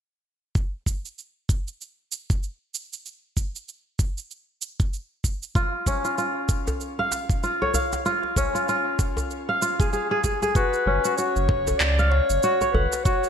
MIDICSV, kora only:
0, 0, Header, 1, 2, 480
1, 0, Start_track
1, 0, Tempo, 625000
1, 425, Time_signature, 4, 2, 24, 8
1, 10208, End_track
2, 0, Start_track
2, 0, Title_t, "Kora"
2, 0, Program_c, 0, 46
2, 4267, Note_on_c, 0, 65, 78
2, 4509, Note_on_c, 0, 61, 61
2, 4640, Note_off_c, 0, 65, 0
2, 4643, Note_on_c, 0, 65, 64
2, 4744, Note_off_c, 0, 65, 0
2, 4747, Note_on_c, 0, 65, 67
2, 5368, Note_on_c, 0, 77, 89
2, 5707, Note_off_c, 0, 65, 0
2, 5710, Note_on_c, 0, 65, 72
2, 5845, Note_off_c, 0, 61, 0
2, 5849, Note_on_c, 0, 73, 69
2, 5944, Note_off_c, 0, 77, 0
2, 5947, Note_on_c, 0, 77, 65
2, 6184, Note_off_c, 0, 65, 0
2, 6187, Note_on_c, 0, 65, 84
2, 6430, Note_on_c, 0, 61, 65
2, 6561, Note_off_c, 0, 65, 0
2, 6564, Note_on_c, 0, 65, 68
2, 6669, Note_off_c, 0, 65, 0
2, 6672, Note_on_c, 0, 65, 73
2, 6714, Note_off_c, 0, 77, 0
2, 6730, Note_off_c, 0, 73, 0
2, 7286, Note_on_c, 0, 77, 88
2, 7386, Note_off_c, 0, 65, 0
2, 7389, Note_on_c, 0, 65, 67
2, 7525, Note_on_c, 0, 68, 71
2, 7623, Note_off_c, 0, 68, 0
2, 7626, Note_on_c, 0, 68, 77
2, 7762, Note_off_c, 0, 68, 0
2, 7765, Note_off_c, 0, 61, 0
2, 7765, Note_on_c, 0, 68, 92
2, 7864, Note_off_c, 0, 68, 0
2, 7867, Note_on_c, 0, 68, 84
2, 8003, Note_off_c, 0, 68, 0
2, 8006, Note_on_c, 0, 68, 97
2, 8053, Note_off_c, 0, 77, 0
2, 8110, Note_on_c, 0, 66, 85
2, 8156, Note_off_c, 0, 65, 0
2, 8348, Note_on_c, 0, 61, 63
2, 8484, Note_off_c, 0, 66, 0
2, 8487, Note_on_c, 0, 66, 61
2, 8586, Note_off_c, 0, 66, 0
2, 8589, Note_on_c, 0, 66, 68
2, 9054, Note_off_c, 0, 68, 0
2, 9208, Note_on_c, 0, 77, 94
2, 9255, Note_off_c, 0, 66, 0
2, 9551, Note_on_c, 0, 66, 81
2, 9597, Note_off_c, 0, 77, 0
2, 9683, Note_off_c, 0, 61, 0
2, 9688, Note_on_c, 0, 73, 70
2, 9787, Note_on_c, 0, 78, 65
2, 10024, Note_off_c, 0, 66, 0
2, 10027, Note_on_c, 0, 66, 80
2, 10208, Note_off_c, 0, 66, 0
2, 10208, Note_off_c, 0, 73, 0
2, 10208, Note_off_c, 0, 78, 0
2, 10208, End_track
0, 0, End_of_file